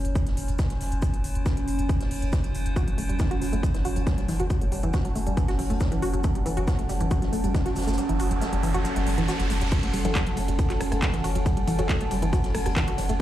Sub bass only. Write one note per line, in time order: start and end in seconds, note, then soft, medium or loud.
0.05 0.15 F#1 medium
0.27 0.37 F#1 medium
0.37 0.48 F#1 loud
0.49 0.59 F#1 medium
0.70 0.80 F#1 medium
0.81 0.91 F#1 loud
0.92 1.02 F#1 medium
1.14 1.24 F#1 medium
1.24 1.35 F#1 loud
1.35 1.46 F#1 medium
1.57 1.67 F#1 medium
1.67 1.78 F#1 loud
1.79 1.89 F#1 medium
2.00 2.10 F#1 medium
2.11 2.22 F#1 loud
2.22 2.33 F#1 medium
2.44 2.54 F#1 medium
2.55 2.65 F#1 loud
2.66 2.76 F#1 medium
2.88 2.97 F#1 medium
2.98 3.09 F#1 loud
3.09 3.20 F#1 medium
3.31 3.41 F#1 medium
3.42 3.52 F#1 loud
3.53 3.63 F#1 medium
3.75 3.85 F#1 medium
3.85 3.96 F#1 medium
3.96 4.07 F#1 medium
4.18 4.28 F#1 medium
4.29 4.39 F#1 loud
4.40 4.50 F#1 medium
4.62 4.71 F#1 medium
4.72 4.83 F#1 loud
4.83 4.94 F#1 medium
5.05 5.15 F#1 medium
5.16 5.26 F#1 loud
5.27 5.37 F#1 medium
5.48 5.58 F#1 medium
5.59 5.70 F#1 loud
5.70 5.80 F#1 medium
5.92 6.02 F#1 medium
6.02 6.13 F#1 loud
6.14 6.24 F#1 medium
6.35 6.45 F#1 medium
6.46 6.56 F#1 loud
6.57 6.67 F#1 medium
6.79 6.89 F#1 medium
6.89 7.00 F#1 loud
7.01 7.11 F#1 medium
7.22 7.32 F#1 medium
7.33 7.43 F#1 loud
7.44 7.54 F#1 medium
7.66 7.76 F#1 medium
7.76 7.87 F#1 loud
7.87 7.98 F#1 medium
8.09 8.19 F#1 medium
8.20 8.30 F#1 loud
8.31 8.41 F#1 medium
8.53 8.63 F#1 medium
8.63 8.74 F#1 loud
8.74 8.85 F#1 medium
8.96 9.06 F#1 medium
9.06 9.17 F#1 loud
9.18 9.28 F#1 medium
9.40 9.49 F#1 medium
9.50 9.61 F#1 loud
9.61 9.72 F#1 medium
9.83 9.93 F#1 medium
9.94 10.04 F#1 loud
10.05 10.15 F#1 medium
10.27 10.36 F#1 medium
10.37 10.48 F#1 loud
10.48 10.59 F#1 medium
10.70 10.80 F#1 medium
10.80 10.91 F#1 loud
10.92 11.02 F#1 medium
11.14 11.23 F#1 medium
11.24 11.35 F#1 loud
11.35 11.46 F#1 medium
11.57 11.67 F#1 medium
11.68 11.78 F#1 loud
11.79 11.89 F#1 medium
12.01 12.10 F#1 medium
12.11 12.22 F#1 loud
12.22 12.33 F#1 medium
12.44 12.54 F#1 medium
12.55 12.65 F#1 loud
12.66 12.76 F#1 medium
12.88 12.98 F#1 medium
12.98 13.09 F#1 loud
13.09 13.20 F#1 medium